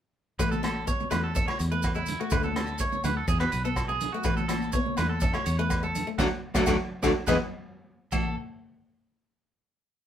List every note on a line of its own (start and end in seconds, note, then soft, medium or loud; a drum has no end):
0.39 0.94 A1 loud
0.39 0.61 A3 medium
0.39 0.51 B4 loud
0.39 kick medium
0.39 cross-stick medium
0.39 low agogo medium
0.39 maracas medium
0.51 0.63 A4 medium
0.51 high conga medium
0.51 maracas soft
0.63 0.84 C#4 medium
0.63 0.86 A4 medium
0.63 cross-stick medium
0.63 closed hi-hat medium
0.63 high conga medium
0.63 low agogo medium
0.87 1.08 B3 medium
0.87 1.10 C#5 medium
0.87 kick medium
0.87 maracas medium
1.00 high conga medium
1.00 maracas soft
1.11 1.48 E2 medium
1.11 1.32 A3 medium
1.11 1.22 B4 medium
1.11 cross-stick medium
1.11 closed hi-hat medium
1.11 low conga medium
1.11 low agogo medium
1.11 maracas medium
1.24 1.34 A4 medium
1.35 1.46 C#4 medium
1.35 1.47 A4 medium
1.35 kick medium
1.35 maracas medium
1.48 1.69 A3 medium
1.48 1.59 C#5 medium
1.48 cross-stick medium
1.48 low agogo medium
1.59 2.15 E2 medium
1.59 muted clean electric guitar stroke medium
1.59 closed hi-hat soft
1.59 maracas medium
1.72 1.93 A3 medium
1.72 1.95 B4 medium
1.82 kick medium
1.82 cross-stick medium
1.82 low agogo medium
1.82 maracas medium
1.94 2.17 G#3 medium
1.94 2.18 E4 medium
1.94 maracas soft
2.06 closed hi-hat medium
2.06 low conga medium
2.06 maracas medium
2.20 2.31 A3 medium
2.20 2.31 F#4 medium
2.30 2.87 D2 loud
2.30 2.53 A3 medium
2.30 2.43 B4 medium
2.30 kick medium
2.30 cross-stick medium
2.30 low agogo medium
2.30 maracas medium
2.43 2.55 A4 medium
2.43 high conga medium
2.43 maracas soft
2.56 2.78 C#4 medium
2.56 2.79 A4 medium
2.56 cross-stick medium
2.56 closed hi-hat medium
2.56 high conga medium
2.56 low agogo medium
2.67 maracas soft
2.78 3.03 C#5 medium
2.78 muted steel-string acoustic guitar stroke medium
2.78 kick medium
2.78 maracas medium
2.92 high conga medium
2.92 maracas soft
3.04 3.23 D2 medium
3.04 3.26 A3 medium
3.04 3.16 B4 medium
3.04 closed hi-hat soft
3.04 low conga medium
3.04 low agogo medium
3.04 maracas medium
3.17 3.28 A4 medium
3.28 3.46 E2 loud
3.28 3.39 C#4 medium
3.28 3.40 G#4 medium
3.28 kick medium
3.28 maracas medium
3.40 3.62 B3 medium
3.40 3.51 B4 medium
3.40 cross-stick medium
3.40 low agogo medium
3.52 4.08 B1 medium
3.52 3.64 B4 medium
3.52 closed hi-hat soft
3.52 maracas medium
3.64 3.86 B3 medium
3.64 3.88 A4 medium
3.64 maracas soft
3.76 kick medium
3.76 cross-stick medium
3.76 low agogo medium
3.76 maracas medium
3.88 4.10 G#3 medium
3.88 4.12 G#4 medium
3.88 maracas soft
4.00 closed hi-hat medium
4.00 low conga medium
4.00 maracas medium
4.13 4.24 A3 medium
4.13 4.24 F#4 medium
4.23 4.80 A1 loud
4.23 4.47 A3 medium
4.23 4.36 B4 medium
4.23 kick medium
4.23 cross-stick medium
4.23 low agogo medium
4.23 maracas medium
4.37 4.47 A4 medium
4.37 high conga medium
4.37 maracas soft
4.48 4.71 C#4 medium
4.48 4.72 A4 medium
4.48 cross-stick medium
4.48 closed hi-hat medium
4.48 high conga medium
4.48 low agogo medium
4.48 maracas medium
4.62 maracas soft
4.72 4.96 B3 medium
4.72 4.96 C#5 medium
4.72 kick medium
4.72 maracas medium
4.86 high conga medium
4.97 5.35 E2 medium
4.97 5.20 A3 medium
4.97 5.09 B4 medium
4.97 cross-stick medium
4.97 closed hi-hat soft
4.97 low conga medium
4.97 low agogo medium
4.97 maracas medium
5.09 5.21 A4 medium
5.20 5.33 C#4 medium
5.20 5.34 A4 medium
5.20 kick loud
5.20 maracas medium
5.33 5.56 A3 medium
5.33 5.45 C#5 medium
5.33 cross-stick medium
5.33 low agogo medium
5.46 6.02 E2 medium
5.46 5.58 C#5 medium
5.46 closed hi-hat medium
5.46 maracas medium
5.58 5.80 A3 medium
5.58 5.82 B4 medium
5.58 maracas soft
5.70 kick medium
5.70 cross-stick medium
5.70 low agogo medium
5.70 maracas medium
5.83 6.04 G#3 medium
5.83 6.06 A4 medium
5.83 maracas soft
5.95 closed hi-hat soft
5.95 low conga medium
5.95 maracas medium
6.07 6.18 A3 medium
6.18 6.28 D2 medium
6.18 6.27 F#3 loud
6.18 6.27 A3 medium
6.18 6.27 D4 medium
6.18 6.26 F#4 loud
6.18 6.26 A4 medium
6.18 6.27 D5 medium
6.18 kick medium
6.18 snare medium
6.18 low conga medium
6.18 low agogo medium
6.18 maracas loud
6.54 6.64 D2 loud
6.54 6.63 F#3 loud
6.54 6.63 A3 medium
6.54 6.63 D4 medium
6.54 6.63 F#4 medium
6.54 6.63 A4 medium
6.54 6.63 D5 loud
6.54 kick medium
6.54 snare medium
6.54 low conga medium
6.54 low agogo loud
6.54 maracas medium
6.66 6.76 D2 medium
6.66 6.75 F#3 medium
6.66 6.75 A3 medium
6.66 6.75 D4 medium
6.66 6.75 F#4 medium
6.66 6.75 A4 medium
6.66 6.75 D5 medium
6.66 kick medium
6.66 snare medium
6.66 low conga medium
6.66 low agogo medium
6.66 maracas loud
7.03 7.13 D2 medium
7.03 7.11 F#3 medium
7.03 7.11 A3 medium
7.03 7.11 D4 medium
7.03 7.11 F#4 medium
7.03 7.11 A4 medium
7.03 7.11 D5 medium
7.03 kick medium
7.03 snare medium
7.03 low conga loud
7.03 low agogo medium
7.03 maracas medium
7.27 7.36 E2 loud
7.27 7.36 E3 loud
7.27 7.36 G#3 loud
7.27 7.36 B3 medium
7.27 7.35 E4 medium
7.27 7.35 G#4 medium
7.27 7.35 B4 medium
7.27 kick medium
7.27 snare medium
7.27 low conga loud
7.27 low agogo medium
7.27 maracas loud
8.12 8.35 A1 medium
8.12 8.27 A3 medium
8.12 8.35 A4 medium
8.12 kick medium
8.12 crash medium
8.12 high conga medium
8.12 low agogo loud
8.12 maracas medium